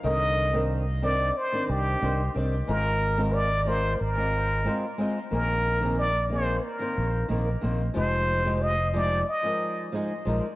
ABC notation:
X:1
M:4/4
L:1/16
Q:1/4=91
K:Cm
V:1 name="Muted trumpet"
e4 z2 d2 c2 G4 z2 | B4 d2 c2 B6 z2 | B4 d2 c2 B4 z4 | c4 e2 d2 e4 z4 |]
V:2 name="Nylon-string guitar"
[D,E,CB]3 [E,CDB]2 z [E,CDB]2 z [E,CDd]3 [E,CDc] z [E,CDd] z | [A,CFB]3 [A,CFB]2 z [A,CFB]2 z [A,CFe]3 [A,CFc] z [A,CFe] z | [E,B,CA]3 [E,B,CA]2 z [E,B,CA]2 z [E,B,Cc]3 [E,B,CB] z [E,B,Cc] z | [F,A,EG]3 [F,A,EG]2 z [F,A,EG]2 z [F,A,EB]3 [F,A,EA] z [F,A,EB] z |]
V:3 name="Fingered electric bass" clef=bass
C,,8 z2 C,,2 C,,2 C,,2 | A,,,8 A,,,4 z4 | B,,,8 z2 B,,,2 B,,,2 B,,,2 | F,,,8 z6 B,,,2 |]